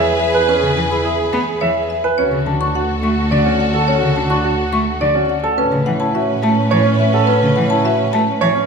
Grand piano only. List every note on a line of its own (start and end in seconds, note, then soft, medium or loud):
0.00 0.10 E5 medium
0.34 0.53 B4 medium
0.48 0.67 C#4 medium
0.91 1.09 E4 medium
1.05 1.23 G#4 medium
1.61 1.80 E5 medium
2.04 2.22 B4 medium
2.18 2.37 C#4 medium
2.60 2.79 D4 soft
2.75 2.93 F#4 medium
3.31 3.50 D5 medium
3.45 3.64 C#4 medium
3.74 3.92 A4 medium
3.88 4.06 C#4 medium
4.30 4.49 D4 medium
4.44 4.63 F#4 medium
5.01 5.19 D5 medium
5.15 5.34 C#4 medium
5.44 5.62 A4 medium
5.58 5.76 C#4 medium
6.00 6.19 E4 medium
6.15 6.33 F#4 medium
6.71 6.89 C#5 medium
6.86 7.04 C#4 medium
7.14 7.32 A4 medium
7.28 7.46 C#4 medium
7.71 7.89 E4 medium
7.84 8.03 F#4 medium
8.41 8.59 C#5 medium
8.55 8.66 C#4 medium